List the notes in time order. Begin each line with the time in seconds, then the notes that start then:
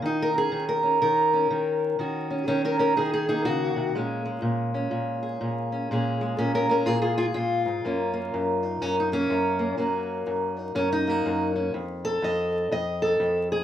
0.02 D#3 D#4
0.22 A#4
0.34 C#4
0.38 G#4
0.52 D#3
0.69 A#4
0.83 C#4
1.02 D#3 A#4
1.33 C#4
1.51 D#3
1.99 D#3 C#4 F#4
2.30 C#4
2.48 D#3 C#4 A#4
2.65 C#4 A#4
2.79 C#4 A#4
2.97 D#3 D#4 G#4
3.13 D#4 G#4
3.29 A#3 D#4 G#4
3.45 C#3 F#4
3.76 C3
3.95 A#2 G#3 C#4
4.25 G#3
4.42 A#2
4.74 C#4
4.91 A#2
5.23 G#4
5.41 A#2
5.72 C#4
5.91 A#2 G#3 C#4 G#4
6.21 G#3
6.38 A#2 C#4 A#4
6.55 C#4 A#4
6.69 G#3 C#4 A#4
6.86 A#2 F4 G#4
7.02 F4 G#4
7.18 F4 G#4
7.34 A#2 F4
7.66 G#2
7.85 F#2 A#3 C#4
8.14 A#3
8.34 F#2
8.65 D#4
8.82 F#2 C#4
9.00 D#4
9.12 A#3 C#4
9.30 F#2
9.59 A#3
9.77 F#2 A#3 C#4 F#4
10.27 F#2
10.59 D#4
10.75 F#2 C#4
10.92 D#4
11.07 A#3 F#4
11.26 F#2
11.56 C#4
11.74 F2
12.05 A4
12.22 F2 D#5
12.71 F2 D#5
13.02 A4
13.20 F2
13.52 G#4